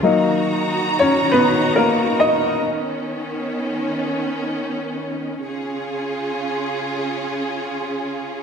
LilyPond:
<<
  \new Staff \with { instrumentName = "Upright piano" } { \time 4/4 \key ces \lydian \tempo 4 = 85 <ges bes ees'>8 r4 <des' des''>8 \tuplet 3/2 { <ces' ces''>4 <bes bes'>8~ <bes bes'>8 <ees' ees''>4 } | r1 | r1 | }
  \new Staff \with { instrumentName = "String section" } { \time 4/4 \key ces \lydian <ees ees' ges' bes''>1 | <ees ces' des'>1 | <des des' f' aes'>1 | }
>>